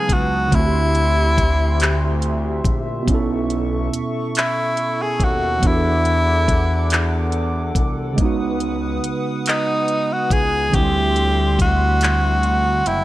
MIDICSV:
0, 0, Header, 1, 6, 480
1, 0, Start_track
1, 0, Tempo, 851064
1, 297, Time_signature, 6, 3, 24, 8
1, 7357, End_track
2, 0, Start_track
2, 0, Title_t, "Analog synth pad"
2, 0, Program_c, 0, 89
2, 0, Note_on_c, 0, 71, 75
2, 0, Note_on_c, 0, 81, 76
2, 0, Note_on_c, 0, 87, 85
2, 275, Note_off_c, 0, 81, 0
2, 282, Note_off_c, 0, 71, 0
2, 283, Note_off_c, 0, 87, 0
2, 292, Note_on_c, 0, 67, 73
2, 295, Note_on_c, 0, 84, 81
2, 296, Note_on_c, 0, 76, 77
2, 1720, Note_off_c, 0, 67, 0
2, 1721, Note_off_c, 0, 84, 0
2, 1737, Note_on_c, 0, 69, 82
2, 1739, Note_on_c, 0, 85, 88
2, 3154, Note_off_c, 0, 76, 0
2, 3163, Note_off_c, 0, 85, 0
2, 3180, Note_on_c, 0, 86, 95
2, 3182, Note_on_c, 0, 78, 76
2, 4594, Note_off_c, 0, 69, 0
2, 4604, Note_off_c, 0, 86, 0
2, 4605, Note_off_c, 0, 78, 0
2, 4611, Note_on_c, 0, 87, 86
2, 4612, Note_on_c, 0, 71, 80
2, 4612, Note_on_c, 0, 78, 80
2, 6039, Note_off_c, 0, 87, 0
2, 6040, Note_off_c, 0, 71, 0
2, 6040, Note_off_c, 0, 78, 0
2, 6048, Note_on_c, 0, 84, 87
2, 6049, Note_on_c, 0, 76, 74
2, 6051, Note_on_c, 0, 55, 84
2, 7357, Note_off_c, 0, 55, 0
2, 7357, Note_off_c, 0, 76, 0
2, 7357, Note_off_c, 0, 84, 0
2, 7357, End_track
3, 0, Start_track
3, 0, Title_t, "Tenor saxophone"
3, 0, Program_c, 1, 66
3, 0, Note_on_c, 1, 68, 87
3, 73, Note_on_c, 1, 66, 85
3, 81, Note_off_c, 1, 68, 0
3, 310, Note_on_c, 1, 64, 109
3, 319, Note_off_c, 1, 66, 0
3, 1263, Note_off_c, 1, 64, 0
3, 2474, Note_on_c, 1, 64, 98
3, 2830, Note_on_c, 1, 68, 85
3, 2839, Note_off_c, 1, 64, 0
3, 2956, Note_on_c, 1, 66, 93
3, 2964, Note_off_c, 1, 68, 0
3, 3198, Note_on_c, 1, 64, 102
3, 3207, Note_off_c, 1, 66, 0
3, 4147, Note_off_c, 1, 64, 0
3, 5353, Note_on_c, 1, 63, 89
3, 5712, Note_on_c, 1, 66, 84
3, 5721, Note_off_c, 1, 63, 0
3, 5824, Note_on_c, 1, 68, 97
3, 5832, Note_off_c, 1, 66, 0
3, 6063, Note_on_c, 1, 67, 103
3, 6071, Note_off_c, 1, 68, 0
3, 6540, Note_off_c, 1, 67, 0
3, 6549, Note_on_c, 1, 66, 91
3, 7262, Note_on_c, 1, 64, 85
3, 7271, Note_off_c, 1, 66, 0
3, 7357, Note_off_c, 1, 64, 0
3, 7357, End_track
4, 0, Start_track
4, 0, Title_t, "Tine electric piano"
4, 0, Program_c, 2, 4
4, 0, Control_c, 2, 64, 127
4, 0, Note_on_c, 2, 49, 79
4, 0, Note_on_c, 2, 54, 86
4, 0, Note_on_c, 2, 56, 71
4, 0, Note_on_c, 2, 59, 71
4, 0, Note_on_c, 2, 63, 67
4, 263, Note_off_c, 2, 49, 0
4, 271, Note_off_c, 2, 56, 0
4, 271, Note_on_c, 2, 50, 64
4, 278, Note_off_c, 2, 59, 0
4, 287, Note_off_c, 2, 63, 0
4, 288, Note_on_c, 2, 57, 62
4, 294, Note_off_c, 2, 54, 0
4, 304, Control_c, 2, 64, 0
4, 304, Note_on_c, 2, 60, 58
4, 320, Note_on_c, 2, 64, 59
4, 334, Note_on_c, 2, 66, 61
4, 352, Note_off_c, 2, 66, 0
4, 373, Note_on_c, 2, 67, 66
4, 404, Control_c, 2, 64, 127
4, 1701, Note_off_c, 2, 50, 0
4, 1707, Note_on_c, 2, 47, 76
4, 1710, Note_off_c, 2, 57, 0
4, 1718, Note_off_c, 2, 60, 0
4, 1724, Note_on_c, 2, 59, 70
4, 1725, Note_off_c, 2, 64, 0
4, 1741, Note_on_c, 2, 61, 69
4, 1745, Control_c, 2, 64, 0
4, 1752, Note_off_c, 2, 67, 0
4, 1755, Note_on_c, 2, 64, 66
4, 1773, Note_on_c, 2, 69, 87
4, 1838, Control_c, 2, 64, 127
4, 3139, Note_off_c, 2, 47, 0
4, 3147, Note_off_c, 2, 59, 0
4, 3155, Note_on_c, 2, 52, 58
4, 3156, Note_off_c, 2, 61, 0
4, 3163, Note_off_c, 2, 64, 0
4, 3168, Note_on_c, 2, 59, 54
4, 3172, Note_off_c, 2, 69, 0
4, 3184, Control_c, 2, 64, 0
4, 3188, Note_on_c, 2, 62, 58
4, 3201, Note_on_c, 2, 66, 58
4, 3218, Note_on_c, 2, 68, 54
4, 3234, Note_off_c, 2, 68, 0
4, 3253, Note_on_c, 2, 69, 63
4, 3292, Control_c, 2, 64, 127
4, 4583, Note_off_c, 2, 52, 0
4, 4588, Note_on_c, 2, 49, 78
4, 4590, Note_off_c, 2, 59, 0
4, 4600, Note_off_c, 2, 62, 0
4, 4603, Note_on_c, 2, 56, 71
4, 4606, Note_off_c, 2, 66, 0
4, 4622, Note_on_c, 2, 59, 73
4, 4624, Control_c, 2, 64, 0
4, 4632, Note_off_c, 2, 69, 0
4, 4635, Note_on_c, 2, 63, 72
4, 4652, Note_on_c, 2, 66, 81
4, 4735, Control_c, 2, 64, 127
4, 6020, Note_off_c, 2, 49, 0
4, 6027, Note_off_c, 2, 56, 0
4, 6031, Note_on_c, 2, 50, 68
4, 6037, Note_off_c, 2, 59, 0
4, 6043, Note_off_c, 2, 63, 0
4, 6046, Note_on_c, 2, 57, 59
4, 6052, Note_off_c, 2, 66, 0
4, 6062, Note_on_c, 2, 60, 62
4, 6063, Control_c, 2, 64, 0
4, 6078, Note_on_c, 2, 64, 53
4, 6095, Note_on_c, 2, 55, 71
4, 6158, Control_c, 2, 64, 127
4, 7024, Note_on_c, 2, 78, 72
4, 7244, Note_off_c, 2, 78, 0
4, 7263, Note_on_c, 2, 79, 76
4, 7357, Note_off_c, 2, 50, 0
4, 7357, Note_off_c, 2, 55, 0
4, 7357, Note_off_c, 2, 57, 0
4, 7357, Note_off_c, 2, 60, 0
4, 7357, Note_off_c, 2, 64, 0
4, 7357, Note_off_c, 2, 79, 0
4, 7357, End_track
5, 0, Start_track
5, 0, Title_t, "Analog synth bass"
5, 0, Program_c, 3, 38
5, 53, Note_on_c, 3, 37, 95
5, 272, Note_off_c, 3, 37, 0
5, 297, Note_on_c, 3, 38, 127
5, 1474, Note_off_c, 3, 38, 0
5, 1493, Note_on_c, 3, 34, 96
5, 1712, Note_off_c, 3, 34, 0
5, 1737, Note_on_c, 3, 35, 115
5, 2194, Note_off_c, 3, 35, 0
5, 2933, Note_on_c, 3, 39, 91
5, 3152, Note_off_c, 3, 39, 0
5, 3176, Note_on_c, 3, 40, 116
5, 4354, Note_off_c, 3, 40, 0
5, 4374, Note_on_c, 3, 36, 97
5, 4593, Note_off_c, 3, 36, 0
5, 4617, Note_on_c, 3, 37, 108
5, 5074, Note_off_c, 3, 37, 0
5, 5814, Note_on_c, 3, 37, 96
5, 6033, Note_off_c, 3, 37, 0
5, 6057, Note_on_c, 3, 38, 115
5, 7234, Note_off_c, 3, 38, 0
5, 7257, Note_on_c, 3, 30, 98
5, 7357, Note_off_c, 3, 30, 0
5, 7357, End_track
6, 0, Start_track
6, 0, Title_t, "Drums"
6, 51, Note_on_c, 9, 36, 86
6, 53, Note_on_c, 9, 42, 68
6, 108, Note_off_c, 9, 36, 0
6, 110, Note_off_c, 9, 42, 0
6, 294, Note_on_c, 9, 36, 102
6, 295, Note_on_c, 9, 42, 72
6, 351, Note_off_c, 9, 36, 0
6, 351, Note_off_c, 9, 42, 0
6, 535, Note_on_c, 9, 42, 49
6, 591, Note_off_c, 9, 42, 0
6, 777, Note_on_c, 9, 36, 89
6, 778, Note_on_c, 9, 42, 67
6, 833, Note_off_c, 9, 36, 0
6, 835, Note_off_c, 9, 42, 0
6, 1014, Note_on_c, 9, 42, 77
6, 1029, Note_on_c, 9, 39, 105
6, 1071, Note_off_c, 9, 42, 0
6, 1086, Note_off_c, 9, 39, 0
6, 1253, Note_on_c, 9, 42, 47
6, 1309, Note_off_c, 9, 42, 0
6, 1492, Note_on_c, 9, 36, 82
6, 1496, Note_on_c, 9, 42, 69
6, 1548, Note_off_c, 9, 36, 0
6, 1552, Note_off_c, 9, 42, 0
6, 1735, Note_on_c, 9, 36, 100
6, 1737, Note_on_c, 9, 42, 67
6, 1791, Note_off_c, 9, 36, 0
6, 1793, Note_off_c, 9, 42, 0
6, 1975, Note_on_c, 9, 42, 48
6, 2031, Note_off_c, 9, 42, 0
6, 2219, Note_on_c, 9, 42, 72
6, 2276, Note_off_c, 9, 42, 0
6, 2454, Note_on_c, 9, 42, 76
6, 2469, Note_on_c, 9, 39, 97
6, 2510, Note_off_c, 9, 42, 0
6, 2525, Note_off_c, 9, 39, 0
6, 2691, Note_on_c, 9, 42, 44
6, 2747, Note_off_c, 9, 42, 0
6, 2931, Note_on_c, 9, 36, 79
6, 2935, Note_on_c, 9, 42, 62
6, 2987, Note_off_c, 9, 36, 0
6, 2991, Note_off_c, 9, 42, 0
6, 3174, Note_on_c, 9, 36, 111
6, 3174, Note_on_c, 9, 42, 77
6, 3230, Note_off_c, 9, 36, 0
6, 3230, Note_off_c, 9, 42, 0
6, 3413, Note_on_c, 9, 42, 47
6, 3469, Note_off_c, 9, 42, 0
6, 3656, Note_on_c, 9, 36, 98
6, 3658, Note_on_c, 9, 42, 68
6, 3712, Note_off_c, 9, 36, 0
6, 3715, Note_off_c, 9, 42, 0
6, 3893, Note_on_c, 9, 42, 77
6, 3908, Note_on_c, 9, 39, 104
6, 3950, Note_off_c, 9, 42, 0
6, 3964, Note_off_c, 9, 39, 0
6, 4130, Note_on_c, 9, 42, 45
6, 4186, Note_off_c, 9, 42, 0
6, 4372, Note_on_c, 9, 36, 84
6, 4375, Note_on_c, 9, 42, 64
6, 4428, Note_off_c, 9, 36, 0
6, 4431, Note_off_c, 9, 42, 0
6, 4613, Note_on_c, 9, 36, 97
6, 4613, Note_on_c, 9, 42, 71
6, 4670, Note_off_c, 9, 36, 0
6, 4670, Note_off_c, 9, 42, 0
6, 4852, Note_on_c, 9, 42, 45
6, 4909, Note_off_c, 9, 42, 0
6, 5098, Note_on_c, 9, 42, 72
6, 5154, Note_off_c, 9, 42, 0
6, 5334, Note_on_c, 9, 42, 76
6, 5349, Note_on_c, 9, 39, 102
6, 5390, Note_off_c, 9, 42, 0
6, 5405, Note_off_c, 9, 39, 0
6, 5572, Note_on_c, 9, 42, 44
6, 5629, Note_off_c, 9, 42, 0
6, 5812, Note_on_c, 9, 36, 87
6, 5816, Note_on_c, 9, 42, 73
6, 5868, Note_off_c, 9, 36, 0
6, 5872, Note_off_c, 9, 42, 0
6, 6054, Note_on_c, 9, 36, 107
6, 6055, Note_on_c, 9, 42, 71
6, 6111, Note_off_c, 9, 36, 0
6, 6111, Note_off_c, 9, 42, 0
6, 6294, Note_on_c, 9, 42, 45
6, 6350, Note_off_c, 9, 42, 0
6, 6536, Note_on_c, 9, 36, 83
6, 6540, Note_on_c, 9, 42, 76
6, 6593, Note_off_c, 9, 36, 0
6, 6596, Note_off_c, 9, 42, 0
6, 6773, Note_on_c, 9, 42, 74
6, 6788, Note_on_c, 9, 39, 92
6, 6829, Note_off_c, 9, 42, 0
6, 6844, Note_off_c, 9, 39, 0
6, 7012, Note_on_c, 9, 42, 42
6, 7068, Note_off_c, 9, 42, 0
6, 7253, Note_on_c, 9, 42, 63
6, 7309, Note_off_c, 9, 42, 0
6, 7357, End_track
0, 0, End_of_file